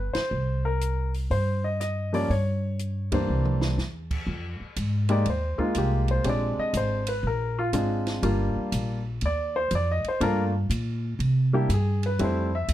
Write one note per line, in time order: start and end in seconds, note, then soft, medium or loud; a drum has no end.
0.00 0.11 G1 medium
0.00 0.12 B4 medium
0.13 0.65 C5 medium
0.13 muted upright bass stroke soft
0.13 snare medium
0.13 ride soft
0.31 1.26 C2 medium
0.65 1.11 A#4 medium
0.81 closed hi-hat soft
1.14 open hi-hat soft
1.31 2.26 G2 medium
1.31 1.65 C5 medium
1.31 open hi-hat soft
1.64 1.79 D#5 medium
1.81 2.11 D#5 medium
1.81 cross-stick soft
1.81 closed hi-hat soft
2.13 2.28 F3 medium
2.13 2.28 G3 soft
2.13 2.28 A#3 soft
2.13 2.28 C#4 medium
2.13 2.31 D5 medium
2.13 open hi-hat soft
2.30 3.25 G2 medium
2.30 3.15 C#5 medium
2.30 open hi-hat soft
2.79 closed hi-hat soft
3.12 3.75 E3 medium
3.12 3.75 G3 soft
3.12 3.75 A#3 medium
3.12 3.75 D4 medium
3.12 3.75 C5 medium
3.12 kick medium
3.12 ride medium
3.28 3.75 C2 medium
3.45 mid tom soft
3.61 snare medium
3.78 4.24 E2 medium
3.78 snare soft
4.11 kick medium
4.11 crash medium
4.27 4.58 F2 medium
4.60 muted upright bass stroke soft
4.76 5.25 G#2 medium
4.76 hi-hat pedal medium
4.76 ride medium
5.09 5.24 G#3 medium
5.09 5.24 A#3 medium
5.09 5.24 D#4 medium
5.09 5.25 G4 medium
5.09 5.27 D5 medium
5.09 ride soft
5.26 5.57 D#2 medium
5.26 ride medium
5.30 5.60 C5 medium
5.58 6.21 G#3 medium
5.58 6.21 A#3 medium
5.58 5.61 D#4 medium
5.58 6.22 F4 medium
5.58 muted upright bass stroke soft
5.58 kick soft
5.62 5.77 D#4 medium
5.75 6.24 C2 medium
5.75 6.09 G4 medium
5.75 hi-hat pedal soft
5.75 ride medium
6.08 6.26 C5 medium
6.08 ride soft
6.24 6.56 A#1 medium
6.24 7.01 G#3 medium
6.24 7.01 C4 soft
6.24 7.01 D4 soft
6.24 7.01 G4 medium
6.24 6.28 C#5 medium
6.24 ride medium
6.29 6.60 D5 medium
6.58 6.75 D#5 medium
6.58 muted upright bass stroke soft
6.73 7.22 G#1 medium
6.73 7.08 C5 medium
6.73 hi-hat pedal medium
6.73 ride medium
7.07 7.24 B4 medium
7.07 ride medium
7.23 7.72 A#1 medium
7.23 7.58 A#4 medium
7.59 7.68 F4 medium
7.73 8.21 G#1 medium
7.73 8.23 G#3 medium
7.73 8.23 C4 medium
7.73 8.21 D4 soft
7.73 8.22 F4 medium
7.73 hi-hat pedal soft
7.73 ride medium
8.07 snare soft
8.07 ride soft
8.23 8.54 G1 medium
8.23 8.99 G3 medium
8.23 8.99 A#3 medium
8.23 8.99 D4 medium
8.23 8.99 F4 medium
8.23 ride medium
8.56 muted upright bass stroke soft
8.72 9.20 A#1 medium
8.72 hi-hat pedal medium
8.72 ride medium
9.21 9.70 D#2 medium
9.21 ride soft
9.26 9.56 D5 medium
9.56 9.71 C5 medium
9.71 10.02 F2 medium
9.71 hi-hat pedal soft
9.71 ride medium
9.75 9.89 D5 medium
9.91 10.06 D#5 medium
10.04 muted upright bass stroke soft
10.04 ride soft
10.08 10.23 C5 medium
10.20 10.69 G2 medium
10.20 10.51 A3 medium
10.20 10.51 A#3 medium
10.20 10.51 D4 medium
10.20 10.51 F4 medium
10.20 10.42 A#4 medium
10.20 ride medium
10.69 11.18 A#2 medium
10.69 hi-hat pedal medium
10.69 ride medium
11.19 11.67 C3 medium
11.19 ride medium
11.53 11.68 G3 medium
11.53 11.68 A#3 medium
11.53 11.68 D4 medium
11.53 11.69 E4 medium
11.53 11.70 G4 medium
11.69 12.17 G2 medium
11.69 hi-hat pedal soft
11.69 ride medium
11.74 12.04 G#4 medium
12.03 12.20 B4 medium
12.03 ride soft
12.19 12.67 F2 medium
12.19 12.49 G3 medium
12.19 12.49 A3 medium
12.19 12.49 C4 medium
12.19 12.49 E4 medium
12.19 ride soft
12.24 12.54 C5 medium
12.55 12.70 E5 medium
12.68 12.73 D#2 medium
12.68 hi-hat pedal medium
12.68 ride medium